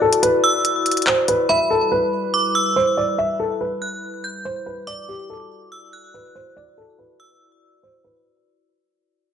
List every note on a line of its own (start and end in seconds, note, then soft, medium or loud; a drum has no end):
0.00 4.83 E4 medium
0.00 1.46 F#4 medium
0.00 0.20 A4 medium
0.00 1.46 D5 medium
0.13 closed hi-hat medium
0.23 1.03 B4 medium
0.23 closed hi-hat medium
0.44 1.03 E6 medium
0.65 closed hi-hat medium
0.86 closed hi-hat medium
0.91 closed hi-hat medium
0.97 closed hi-hat medium
1.02 closed hi-hat medium
1.07 1.26 C5 medium
1.07 clap loud
1.28 1.47 B4 medium
1.28 closed hi-hat medium
1.49 4.84 G3 medium
1.49 4.84 B4 medium
1.49 1.68 E5 medium
1.49 2.30 B5 medium
1.70 1.89 A4 medium
1.92 2.72 B4 medium
2.34 2.54 D6 medium
2.55 3.15 E6 medium
2.76 2.95 C5 medium
2.97 3.16 D5 medium
3.18 3.37 E5 loud
3.39 3.58 A4 medium
3.61 4.41 B4 medium
3.82 4.21 F#6 medium
4.24 4.44 G6 medium
4.45 4.64 C5 medium
4.66 4.85 B4 medium
4.87 8.22 E4 medium
4.87 8.22 F#4 medium
4.87 5.06 D5 medium
4.87 8.22 D5 medium
4.87 5.68 D6 loud
5.08 5.27 G4 medium
5.30 6.10 A4 medium
5.72 5.92 E6 medium
5.93 6.53 F#6 medium
6.14 6.33 B4 medium
6.35 6.54 C5 medium
6.56 6.75 D5 medium
6.77 6.96 A4 medium
6.99 7.79 B4 medium
7.20 7.79 E6 medium
7.83 8.02 C5 medium
8.04 8.23 B4 medium